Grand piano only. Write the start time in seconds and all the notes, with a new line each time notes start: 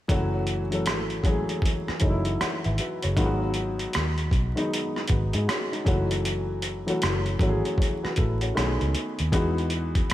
0.08 E3 F#3 A3 C#4 F#4
0.71 E3 F#3 A3 C#4 A4
1.23 E3 F#3 G#3 C#4 G#4
1.31 A3
2.00 E3 F#3 A3 C#4 D#4
2.10 E4
2.41 C#5 F#5
2.64 B4 E5
2.79 F#4 B4
3.03 G#4 C#5
3.16 D#3 F#3 G#3 B3 F4
3.26 F#4
4.55 D#3 F#3 G#3 B3 D#4
5.10 F#4 B4
5.34 D#4 G#4
5.48 C#4 F#4
5.72 G#3 D#4
5.85 E3 F#3 A3 C#4 F#4
6.86 E3 F#3 A3 C#4 F#4
7.39 E3 F#3 A3 C#4 F#4
7.49 G#4
7.79 G#4 C#5
8.03 F#4 B4
8.18 E4 A4
8.41 C#4 F#4
8.55 D#3 A3 B3 C#4 G#4
9.32 E3 G#3 B3 D#4 F#4